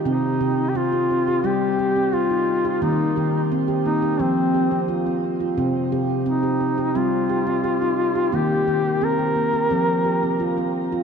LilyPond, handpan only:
<<
  \new Staff \with { instrumentName = "Handpan" } { \time 4/4 \key c \minor \tempo 4 = 87 c'8 g'8 c'16 g'16 c'16 g'16 c'8 g'16 c'16 g'16 ees'8 g'16 | bes8 g'8 c'16 g'16 bes16 g'16 c'8 g'16 c'16 f'16 c'8 f'16 | c'8 g'8 c'16 g'16 c'16 g'16 c'8 g'16 c'16 g'16 ees'8 g'16 | bes8 g'8 c'16 g'16 bes16 g'16 c'8 g'16 c'16 f'16 c'8 f'16 | }
  \new Staff \with { instrumentName = "Handpan" } { \clef bass \time 4/4 \key c \minor c8 c4. g8 r4. | ees8 ees4. f8 r4. | c8 c4. g8 r4. | ees8 ees4. f8 r4. | }
>>